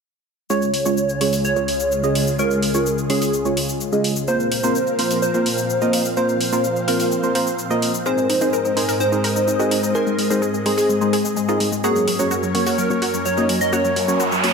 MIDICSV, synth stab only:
0, 0, Header, 1, 2, 480
1, 0, Start_track
1, 0, Key_signature, -5, "major"
1, 0, Tempo, 472441
1, 508, Time_signature, 4, 2, 24, 8
1, 14766, End_track
2, 0, Start_track
2, 0, Title_t, "Synth stab"
2, 0, Program_c, 0, 62
2, 507, Note_on_c, 0, 61, 82
2, 507, Note_on_c, 0, 65, 82
2, 508, Note_on_c, 0, 56, 90
2, 508, Note_on_c, 0, 68, 83
2, 508, Note_on_c, 0, 73, 99
2, 716, Note_off_c, 0, 61, 0
2, 716, Note_off_c, 0, 65, 0
2, 717, Note_off_c, 0, 56, 0
2, 717, Note_off_c, 0, 68, 0
2, 717, Note_off_c, 0, 73, 0
2, 868, Note_on_c, 0, 56, 86
2, 868, Note_on_c, 0, 73, 92
2, 869, Note_on_c, 0, 61, 81
2, 869, Note_on_c, 0, 65, 80
2, 869, Note_on_c, 0, 68, 80
2, 998, Note_off_c, 0, 56, 0
2, 998, Note_off_c, 0, 61, 0
2, 998, Note_off_c, 0, 65, 0
2, 998, Note_off_c, 0, 68, 0
2, 998, Note_off_c, 0, 73, 0
2, 1227, Note_on_c, 0, 65, 70
2, 1227, Note_on_c, 0, 73, 84
2, 1228, Note_on_c, 0, 56, 74
2, 1228, Note_on_c, 0, 61, 70
2, 1228, Note_on_c, 0, 68, 70
2, 1559, Note_off_c, 0, 56, 0
2, 1559, Note_off_c, 0, 61, 0
2, 1559, Note_off_c, 0, 65, 0
2, 1559, Note_off_c, 0, 68, 0
2, 1559, Note_off_c, 0, 73, 0
2, 1588, Note_on_c, 0, 56, 71
2, 1588, Note_on_c, 0, 61, 64
2, 1588, Note_on_c, 0, 65, 65
2, 1588, Note_on_c, 0, 68, 64
2, 1588, Note_on_c, 0, 73, 78
2, 1718, Note_off_c, 0, 56, 0
2, 1718, Note_off_c, 0, 61, 0
2, 1718, Note_off_c, 0, 65, 0
2, 1718, Note_off_c, 0, 68, 0
2, 1718, Note_off_c, 0, 73, 0
2, 2068, Note_on_c, 0, 65, 75
2, 2068, Note_on_c, 0, 75, 90
2, 2069, Note_on_c, 0, 56, 83
2, 2069, Note_on_c, 0, 61, 75
2, 2069, Note_on_c, 0, 68, 77
2, 2277, Note_off_c, 0, 56, 0
2, 2277, Note_off_c, 0, 61, 0
2, 2277, Note_off_c, 0, 65, 0
2, 2277, Note_off_c, 0, 68, 0
2, 2277, Note_off_c, 0, 75, 0
2, 2428, Note_on_c, 0, 56, 92
2, 2428, Note_on_c, 0, 61, 82
2, 2428, Note_on_c, 0, 65, 81
2, 2428, Note_on_c, 0, 68, 81
2, 2428, Note_on_c, 0, 73, 101
2, 2637, Note_off_c, 0, 56, 0
2, 2637, Note_off_c, 0, 61, 0
2, 2637, Note_off_c, 0, 65, 0
2, 2637, Note_off_c, 0, 68, 0
2, 2637, Note_off_c, 0, 73, 0
2, 2789, Note_on_c, 0, 56, 88
2, 2789, Note_on_c, 0, 61, 78
2, 2789, Note_on_c, 0, 65, 79
2, 2789, Note_on_c, 0, 68, 78
2, 2789, Note_on_c, 0, 73, 98
2, 2918, Note_off_c, 0, 61, 0
2, 2919, Note_off_c, 0, 56, 0
2, 2919, Note_off_c, 0, 65, 0
2, 2919, Note_off_c, 0, 68, 0
2, 2919, Note_off_c, 0, 73, 0
2, 3147, Note_on_c, 0, 56, 78
2, 3147, Note_on_c, 0, 61, 69
2, 3147, Note_on_c, 0, 68, 69
2, 3147, Note_on_c, 0, 73, 82
2, 3148, Note_on_c, 0, 65, 71
2, 3479, Note_off_c, 0, 56, 0
2, 3479, Note_off_c, 0, 61, 0
2, 3479, Note_off_c, 0, 65, 0
2, 3479, Note_off_c, 0, 68, 0
2, 3479, Note_off_c, 0, 73, 0
2, 3508, Note_on_c, 0, 56, 71
2, 3508, Note_on_c, 0, 61, 65
2, 3508, Note_on_c, 0, 65, 65
2, 3508, Note_on_c, 0, 68, 65
2, 3508, Note_on_c, 0, 73, 78
2, 3638, Note_off_c, 0, 56, 0
2, 3638, Note_off_c, 0, 61, 0
2, 3638, Note_off_c, 0, 65, 0
2, 3638, Note_off_c, 0, 68, 0
2, 3638, Note_off_c, 0, 73, 0
2, 3988, Note_on_c, 0, 56, 82
2, 3988, Note_on_c, 0, 61, 75
2, 3988, Note_on_c, 0, 65, 73
2, 3988, Note_on_c, 0, 68, 77
2, 3988, Note_on_c, 0, 75, 91
2, 4196, Note_off_c, 0, 75, 0
2, 4197, Note_off_c, 0, 56, 0
2, 4197, Note_off_c, 0, 61, 0
2, 4197, Note_off_c, 0, 65, 0
2, 4197, Note_off_c, 0, 68, 0
2, 4347, Note_on_c, 0, 60, 85
2, 4347, Note_on_c, 0, 65, 84
2, 4347, Note_on_c, 0, 72, 98
2, 4348, Note_on_c, 0, 58, 88
2, 4348, Note_on_c, 0, 70, 83
2, 4556, Note_off_c, 0, 58, 0
2, 4556, Note_off_c, 0, 60, 0
2, 4556, Note_off_c, 0, 65, 0
2, 4556, Note_off_c, 0, 70, 0
2, 4556, Note_off_c, 0, 72, 0
2, 4709, Note_on_c, 0, 58, 89
2, 4709, Note_on_c, 0, 60, 81
2, 4709, Note_on_c, 0, 65, 82
2, 4709, Note_on_c, 0, 70, 78
2, 4709, Note_on_c, 0, 72, 97
2, 4838, Note_off_c, 0, 58, 0
2, 4838, Note_off_c, 0, 60, 0
2, 4838, Note_off_c, 0, 65, 0
2, 4838, Note_off_c, 0, 70, 0
2, 4838, Note_off_c, 0, 72, 0
2, 5068, Note_on_c, 0, 58, 76
2, 5068, Note_on_c, 0, 60, 71
2, 5068, Note_on_c, 0, 65, 71
2, 5068, Note_on_c, 0, 70, 71
2, 5068, Note_on_c, 0, 72, 84
2, 5400, Note_off_c, 0, 58, 0
2, 5400, Note_off_c, 0, 60, 0
2, 5400, Note_off_c, 0, 65, 0
2, 5400, Note_off_c, 0, 70, 0
2, 5400, Note_off_c, 0, 72, 0
2, 5428, Note_on_c, 0, 58, 72
2, 5428, Note_on_c, 0, 60, 66
2, 5429, Note_on_c, 0, 65, 65
2, 5429, Note_on_c, 0, 70, 65
2, 5429, Note_on_c, 0, 72, 77
2, 5558, Note_off_c, 0, 58, 0
2, 5558, Note_off_c, 0, 60, 0
2, 5558, Note_off_c, 0, 70, 0
2, 5558, Note_off_c, 0, 72, 0
2, 5559, Note_off_c, 0, 65, 0
2, 5909, Note_on_c, 0, 58, 85
2, 5909, Note_on_c, 0, 60, 76
2, 5909, Note_on_c, 0, 65, 74
2, 5909, Note_on_c, 0, 70, 78
2, 5909, Note_on_c, 0, 75, 90
2, 6117, Note_off_c, 0, 58, 0
2, 6117, Note_off_c, 0, 60, 0
2, 6117, Note_off_c, 0, 65, 0
2, 6117, Note_off_c, 0, 70, 0
2, 6117, Note_off_c, 0, 75, 0
2, 6269, Note_on_c, 0, 58, 89
2, 6269, Note_on_c, 0, 60, 83
2, 6269, Note_on_c, 0, 65, 83
2, 6269, Note_on_c, 0, 70, 84
2, 6269, Note_on_c, 0, 72, 100
2, 6477, Note_off_c, 0, 58, 0
2, 6477, Note_off_c, 0, 60, 0
2, 6477, Note_off_c, 0, 65, 0
2, 6477, Note_off_c, 0, 70, 0
2, 6477, Note_off_c, 0, 72, 0
2, 6629, Note_on_c, 0, 58, 86
2, 6629, Note_on_c, 0, 60, 82
2, 6629, Note_on_c, 0, 65, 80
2, 6629, Note_on_c, 0, 72, 97
2, 6630, Note_on_c, 0, 70, 79
2, 6759, Note_off_c, 0, 58, 0
2, 6759, Note_off_c, 0, 60, 0
2, 6759, Note_off_c, 0, 65, 0
2, 6759, Note_off_c, 0, 70, 0
2, 6759, Note_off_c, 0, 72, 0
2, 6988, Note_on_c, 0, 58, 77
2, 6988, Note_on_c, 0, 60, 72
2, 6988, Note_on_c, 0, 65, 71
2, 6988, Note_on_c, 0, 70, 69
2, 6988, Note_on_c, 0, 72, 85
2, 7320, Note_off_c, 0, 58, 0
2, 7320, Note_off_c, 0, 60, 0
2, 7320, Note_off_c, 0, 65, 0
2, 7320, Note_off_c, 0, 70, 0
2, 7320, Note_off_c, 0, 72, 0
2, 7349, Note_on_c, 0, 58, 72
2, 7349, Note_on_c, 0, 60, 67
2, 7349, Note_on_c, 0, 65, 64
2, 7349, Note_on_c, 0, 70, 65
2, 7349, Note_on_c, 0, 72, 79
2, 7444, Note_off_c, 0, 58, 0
2, 7444, Note_off_c, 0, 60, 0
2, 7444, Note_off_c, 0, 65, 0
2, 7444, Note_off_c, 0, 70, 0
2, 7444, Note_off_c, 0, 72, 0
2, 7468, Note_on_c, 0, 58, 85
2, 7468, Note_on_c, 0, 60, 78
2, 7468, Note_on_c, 0, 65, 81
2, 7468, Note_on_c, 0, 70, 78
2, 7468, Note_on_c, 0, 72, 96
2, 7599, Note_off_c, 0, 58, 0
2, 7599, Note_off_c, 0, 60, 0
2, 7599, Note_off_c, 0, 65, 0
2, 7599, Note_off_c, 0, 70, 0
2, 7599, Note_off_c, 0, 72, 0
2, 7828, Note_on_c, 0, 58, 92
2, 7828, Note_on_c, 0, 60, 84
2, 7828, Note_on_c, 0, 65, 84
2, 7828, Note_on_c, 0, 70, 84
2, 7828, Note_on_c, 0, 75, 102
2, 8036, Note_off_c, 0, 75, 0
2, 8037, Note_off_c, 0, 58, 0
2, 8037, Note_off_c, 0, 60, 0
2, 8037, Note_off_c, 0, 65, 0
2, 8037, Note_off_c, 0, 70, 0
2, 8187, Note_on_c, 0, 63, 84
2, 8188, Note_on_c, 0, 60, 87
2, 8188, Note_on_c, 0, 68, 84
2, 8188, Note_on_c, 0, 70, 84
2, 8188, Note_on_c, 0, 72, 101
2, 8396, Note_off_c, 0, 63, 0
2, 8396, Note_off_c, 0, 68, 0
2, 8396, Note_off_c, 0, 72, 0
2, 8397, Note_off_c, 0, 60, 0
2, 8397, Note_off_c, 0, 70, 0
2, 8547, Note_on_c, 0, 60, 90
2, 8547, Note_on_c, 0, 63, 80
2, 8548, Note_on_c, 0, 68, 78
2, 8548, Note_on_c, 0, 70, 80
2, 8548, Note_on_c, 0, 72, 99
2, 8678, Note_off_c, 0, 60, 0
2, 8678, Note_off_c, 0, 63, 0
2, 8678, Note_off_c, 0, 68, 0
2, 8678, Note_off_c, 0, 70, 0
2, 8678, Note_off_c, 0, 72, 0
2, 8907, Note_on_c, 0, 60, 75
2, 8907, Note_on_c, 0, 63, 71
2, 8907, Note_on_c, 0, 68, 71
2, 8907, Note_on_c, 0, 70, 68
2, 8907, Note_on_c, 0, 72, 85
2, 9239, Note_off_c, 0, 60, 0
2, 9239, Note_off_c, 0, 63, 0
2, 9239, Note_off_c, 0, 68, 0
2, 9239, Note_off_c, 0, 70, 0
2, 9239, Note_off_c, 0, 72, 0
2, 9268, Note_on_c, 0, 60, 71
2, 9268, Note_on_c, 0, 63, 66
2, 9268, Note_on_c, 0, 68, 67
2, 9268, Note_on_c, 0, 70, 67
2, 9268, Note_on_c, 0, 72, 78
2, 9398, Note_off_c, 0, 60, 0
2, 9398, Note_off_c, 0, 63, 0
2, 9398, Note_off_c, 0, 68, 0
2, 9398, Note_off_c, 0, 70, 0
2, 9398, Note_off_c, 0, 72, 0
2, 9748, Note_on_c, 0, 60, 82
2, 9748, Note_on_c, 0, 68, 77
2, 9748, Note_on_c, 0, 70, 78
2, 9748, Note_on_c, 0, 75, 93
2, 9749, Note_on_c, 0, 63, 75
2, 9957, Note_off_c, 0, 60, 0
2, 9957, Note_off_c, 0, 63, 0
2, 9957, Note_off_c, 0, 68, 0
2, 9957, Note_off_c, 0, 70, 0
2, 9957, Note_off_c, 0, 75, 0
2, 10108, Note_on_c, 0, 60, 91
2, 10108, Note_on_c, 0, 63, 84
2, 10108, Note_on_c, 0, 68, 84
2, 10108, Note_on_c, 0, 70, 82
2, 10108, Note_on_c, 0, 72, 102
2, 10317, Note_off_c, 0, 60, 0
2, 10317, Note_off_c, 0, 63, 0
2, 10317, Note_off_c, 0, 68, 0
2, 10317, Note_off_c, 0, 70, 0
2, 10317, Note_off_c, 0, 72, 0
2, 10469, Note_on_c, 0, 60, 87
2, 10469, Note_on_c, 0, 63, 83
2, 10469, Note_on_c, 0, 68, 81
2, 10469, Note_on_c, 0, 70, 83
2, 10469, Note_on_c, 0, 72, 98
2, 10598, Note_off_c, 0, 60, 0
2, 10598, Note_off_c, 0, 63, 0
2, 10598, Note_off_c, 0, 68, 0
2, 10598, Note_off_c, 0, 70, 0
2, 10598, Note_off_c, 0, 72, 0
2, 10828, Note_on_c, 0, 60, 76
2, 10828, Note_on_c, 0, 63, 70
2, 10828, Note_on_c, 0, 68, 71
2, 10828, Note_on_c, 0, 70, 74
2, 10828, Note_on_c, 0, 72, 87
2, 11159, Note_off_c, 0, 60, 0
2, 11160, Note_off_c, 0, 63, 0
2, 11160, Note_off_c, 0, 68, 0
2, 11160, Note_off_c, 0, 70, 0
2, 11160, Note_off_c, 0, 72, 0
2, 11189, Note_on_c, 0, 60, 72
2, 11189, Note_on_c, 0, 63, 67
2, 11189, Note_on_c, 0, 68, 65
2, 11189, Note_on_c, 0, 70, 67
2, 11189, Note_on_c, 0, 72, 80
2, 11318, Note_off_c, 0, 60, 0
2, 11318, Note_off_c, 0, 70, 0
2, 11319, Note_off_c, 0, 63, 0
2, 11319, Note_off_c, 0, 68, 0
2, 11319, Note_off_c, 0, 72, 0
2, 11669, Note_on_c, 0, 60, 84
2, 11669, Note_on_c, 0, 63, 77
2, 11669, Note_on_c, 0, 68, 75
2, 11669, Note_on_c, 0, 70, 75
2, 11669, Note_on_c, 0, 75, 95
2, 11877, Note_off_c, 0, 60, 0
2, 11877, Note_off_c, 0, 63, 0
2, 11877, Note_off_c, 0, 68, 0
2, 11877, Note_off_c, 0, 70, 0
2, 11877, Note_off_c, 0, 75, 0
2, 12028, Note_on_c, 0, 58, 91
2, 12028, Note_on_c, 0, 61, 86
2, 12028, Note_on_c, 0, 66, 82
2, 12028, Note_on_c, 0, 70, 81
2, 12028, Note_on_c, 0, 73, 99
2, 12236, Note_off_c, 0, 66, 0
2, 12237, Note_off_c, 0, 58, 0
2, 12237, Note_off_c, 0, 61, 0
2, 12237, Note_off_c, 0, 70, 0
2, 12237, Note_off_c, 0, 73, 0
2, 12387, Note_on_c, 0, 58, 86
2, 12387, Note_on_c, 0, 70, 82
2, 12387, Note_on_c, 0, 73, 96
2, 12388, Note_on_c, 0, 61, 79
2, 12388, Note_on_c, 0, 66, 82
2, 12518, Note_off_c, 0, 58, 0
2, 12518, Note_off_c, 0, 61, 0
2, 12518, Note_off_c, 0, 66, 0
2, 12518, Note_off_c, 0, 70, 0
2, 12518, Note_off_c, 0, 73, 0
2, 12747, Note_on_c, 0, 58, 76
2, 12747, Note_on_c, 0, 61, 71
2, 12747, Note_on_c, 0, 66, 72
2, 12747, Note_on_c, 0, 70, 71
2, 12747, Note_on_c, 0, 73, 87
2, 13079, Note_off_c, 0, 58, 0
2, 13079, Note_off_c, 0, 61, 0
2, 13079, Note_off_c, 0, 66, 0
2, 13079, Note_off_c, 0, 70, 0
2, 13079, Note_off_c, 0, 73, 0
2, 13108, Note_on_c, 0, 58, 73
2, 13108, Note_on_c, 0, 61, 67
2, 13108, Note_on_c, 0, 66, 66
2, 13108, Note_on_c, 0, 70, 66
2, 13108, Note_on_c, 0, 73, 81
2, 13238, Note_off_c, 0, 58, 0
2, 13238, Note_off_c, 0, 61, 0
2, 13238, Note_off_c, 0, 66, 0
2, 13238, Note_off_c, 0, 70, 0
2, 13238, Note_off_c, 0, 73, 0
2, 13588, Note_on_c, 0, 58, 86
2, 13588, Note_on_c, 0, 61, 74
2, 13588, Note_on_c, 0, 66, 77
2, 13588, Note_on_c, 0, 70, 77
2, 13588, Note_on_c, 0, 75, 93
2, 13797, Note_off_c, 0, 58, 0
2, 13797, Note_off_c, 0, 61, 0
2, 13797, Note_off_c, 0, 66, 0
2, 13797, Note_off_c, 0, 70, 0
2, 13797, Note_off_c, 0, 75, 0
2, 13947, Note_on_c, 0, 58, 91
2, 13947, Note_on_c, 0, 61, 86
2, 13947, Note_on_c, 0, 66, 84
2, 13947, Note_on_c, 0, 70, 86
2, 13947, Note_on_c, 0, 73, 104
2, 14156, Note_off_c, 0, 58, 0
2, 14156, Note_off_c, 0, 61, 0
2, 14156, Note_off_c, 0, 66, 0
2, 14156, Note_off_c, 0, 70, 0
2, 14156, Note_off_c, 0, 73, 0
2, 14307, Note_on_c, 0, 66, 81
2, 14308, Note_on_c, 0, 58, 89
2, 14308, Note_on_c, 0, 61, 82
2, 14308, Note_on_c, 0, 70, 78
2, 14308, Note_on_c, 0, 73, 99
2, 14438, Note_off_c, 0, 58, 0
2, 14438, Note_off_c, 0, 61, 0
2, 14438, Note_off_c, 0, 66, 0
2, 14438, Note_off_c, 0, 70, 0
2, 14438, Note_off_c, 0, 73, 0
2, 14667, Note_on_c, 0, 58, 80
2, 14667, Note_on_c, 0, 61, 73
2, 14667, Note_on_c, 0, 66, 72
2, 14667, Note_on_c, 0, 70, 72
2, 14667, Note_on_c, 0, 73, 85
2, 14766, Note_off_c, 0, 58, 0
2, 14766, Note_off_c, 0, 61, 0
2, 14766, Note_off_c, 0, 66, 0
2, 14766, Note_off_c, 0, 70, 0
2, 14766, Note_off_c, 0, 73, 0
2, 14766, End_track
0, 0, End_of_file